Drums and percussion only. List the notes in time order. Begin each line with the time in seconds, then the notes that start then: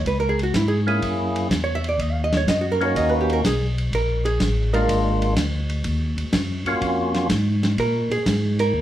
0.06 kick, ride
0.39 ride
0.54 kick, snare, hi-hat pedal, ride
0.88 ride
1.02 kick, ride
1.36 ride
1.51 kick, snare, hi-hat pedal, ride
1.84 ride
1.99 kick, ride
2.33 snare, ride
2.47 kick, snare, hi-hat pedal, ride
2.81 ride
2.96 kick, ride
3.30 ride
3.44 kick, snare, hi-hat pedal, ride
3.78 ride
3.93 kick, ride
4.26 ride
4.40 kick, snare, hi-hat pedal, ride
4.74 ride
4.89 kick, ride
5.22 ride
5.36 kick, snare, hi-hat pedal, ride
5.70 ride
5.84 kick, ride
6.18 ride
6.33 kick, snare, hi-hat pedal, ride
6.66 ride
6.82 kick, ride
7.14 snare, ride
7.30 kick, snare, hi-hat pedal, ride
7.63 snare, ride
7.78 kick, ride
8.11 ride
8.26 kick, snare, hi-hat pedal, ride
8.59 ride